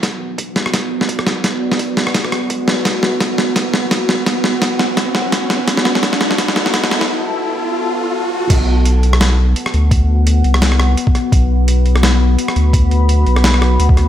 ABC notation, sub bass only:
X:1
M:4/4
L:1/8
Q:"Swing 16ths" 1/4=170
K:Bm
V:1 name="Sub bass" clef=bass
B,,,3 z B,,,3 B,,,- | B,,,3 z F,,,2 A,,,2 | B,,,3 z B,,,3 B,,,- | B,,,3 z4 z |
z8 | z8 | B,,,6 z D,,- | D,,3 =C,,3 z2 |
B,,,6 z D,,- | D,,3 B,,,3 D,,2 |]